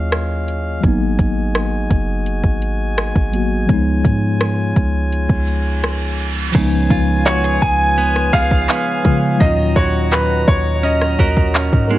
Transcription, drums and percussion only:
0.12 cross-stick loud
0.12 closed hi-hat medium
0.48 closed hi-hat medium
0.83 kick loud
0.83 closed hi-hat medium
1.19 kick medium
1.19 closed hi-hat medium
1.55 cross-stick loud
1.55 closed hi-hat medium
1.91 kick loud
1.91 closed hi-hat medium
2.26 closed hi-hat medium
2.44 kick medium
2.62 closed hi-hat medium
2.98 cross-stick loud
2.98 closed hi-hat medium
3.16 kick medium
3.33 closed hi-hat medium
3.69 kick loud
3.69 closed hi-hat medium
4.05 kick medium
4.05 closed hi-hat medium
4.41 cross-stick loud
4.41 closed hi-hat medium
4.76 kick medium
4.76 closed hi-hat medium
5.12 closed hi-hat medium
5.29 kick medium
5.47 closed hi-hat medium
5.84 cross-stick loud
5.84 closed hi-hat medium
6.19 closed hi-hat medium
6.55 kick loud
6.55 closed hi-hat medium
6.55 crash loud
6.90 kick loud
6.90 closed hi-hat medium
7.26 clap loud
7.26 closed hi-hat medium
7.62 kick loud
7.62 closed hi-hat medium
7.98 closed hi-hat medium
8.16 cross-stick medium
8.33 kick loud
8.33 closed hi-hat medium
8.51 kick medium
8.69 clap loud
8.69 closed hi-hat medium
9.05 kick loud
9.05 closed hi-hat medium
9.41 kick loud
9.41 closed hi-hat medium
9.76 kick loud
9.76 closed hi-hat medium
10.12 clap loud
10.12 closed hi-hat medium
10.48 kick loud
10.48 closed hi-hat medium
10.84 closed hi-hat medium
11.01 cross-stick medium
11.19 kick medium
11.19 closed hi-hat medium
11.37 kick loud
11.55 clap loud
11.55 closed hi-hat medium
11.73 kick loud
11.91 closed hi-hat medium

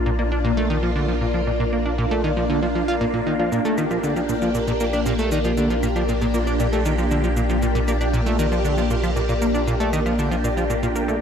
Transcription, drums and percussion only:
3.52 shaker medium
3.65 shaker soft
3.78 claves medium
3.78 shaker medium
3.91 claves soft
3.91 shaker soft
4.04 shaker medium
4.16 shaker soft
4.29 shaker medium
4.42 shaker soft
4.55 shaker medium
4.68 shaker soft
4.80 shaker medium
4.93 claves medium
4.93 shaker soft
5.06 shaker medium
5.19 shaker soft
5.32 shaker medium
5.45 shaker soft
5.57 shaker medium
5.70 shaker soft
5.83 claves medium
5.83 shaker medium
5.96 claves medium
5.96 shaker soft
6.09 shaker medium
6.21 shaker soft
6.34 shaker medium
6.47 shaker soft
6.60 shaker medium
6.73 shaker soft
6.85 shaker medium
6.98 shaker soft
7.11 shaker medium
7.24 shaker soft
7.37 shaker medium
7.50 shaker soft
7.62 shaker medium
7.75 shaker soft
7.88 claves medium
7.88 shaker medium
8.01 claves medium
8.01 shaker soft
8.14 shaker medium
8.26 shaker soft
8.39 shaker medium
8.52 shaker soft
8.65 shaker medium
8.78 shaker soft
8.91 shaker medium
9.04 claves medium
9.04 shaker soft
9.16 shaker medium
9.29 shaker soft
9.42 shaker medium
9.55 shaker soft
9.67 shaker medium
9.80 shaker soft
9.93 claves medium
9.93 shaker medium
10.06 claves medium
10.06 shaker soft
10.19 shaker medium
10.32 shaker soft
10.45 shaker medium
10.57 shaker soft
10.70 shaker medium
10.83 shaker soft
10.96 shaker medium
11.09 shaker soft

